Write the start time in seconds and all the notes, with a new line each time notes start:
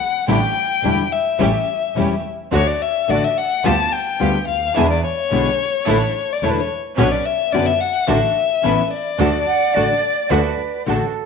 Already playing: F#5
0.27 A1 D3 G3 A3 D4 E4 G4 G5
0.83 E1 D3 G3 A3 D4 E4 G4
1.12 E5
1.39 A1 E3 G3 A3 C#4 E4 G4
1.96 E1 E3 G3 A3 C#4 E4 G4
2.51 D2 D3 A3 D4 F#4 C#5
2.68 D5
2.82 E5
3.08 A1 D3 A3 D4 F#4 D5
3.24 E5
3.38 F#5
3.64 D2 D3 G3 B3 F4 G4 A5
3.93 G5
4.19 D2 D3 G3 B3 F4 G4
4.48 D2 F5
4.75 E2 B2 D3 G#3 B3 D4 E4 G#4 E5
4.91 D5
5.03 C#5
5.31 B1 B2 D3 G#3 B3 D4 E4 G#4
5.86 A1 D3 A3 D4 E4 A4
6.33 D5
6.42 E1 D3 A3 D4 E4 A4 C#5
6.51 B4
6.60 C#5
6.97 B1 B2 D3 B3 C#4 D4 F#4 B4 C#5
7.12 D5
7.26 E5
7.52 F#1 B2 D3 B3 C#4 D4 F#4 B4 D5
7.66 E5
7.81 F#5
8.07 A1 D3 A3 D4 F#4 A4 E5
8.63 A1 E3 B3 C#4 E4 A4 B4
8.91 D5
9.18 D2 D3 A3 D4 F#4 A4
9.47 F#5
9.74 A1 D3 A3 D4 F#4 A4 D5
10.30 D2 D3 A3 D4 F#4 A4 B4
10.86 A1 D3 A3 D4 F#4 A4